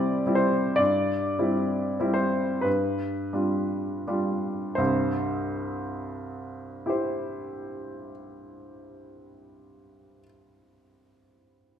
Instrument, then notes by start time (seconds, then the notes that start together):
grand piano
Already playing: C3 G3 C4 E4 D5
0.26 G3 C4 E4
0.35 C5
0.76 G2 D5
1.39 G3 C4 E4
2.00 G3 C4 E4
2.14 C5
2.61 G2 B4
3.33 G3 D4 F4
4.08 G3 D4 F4
4.75 C2 G2 C5
6.86 E4 G4 C5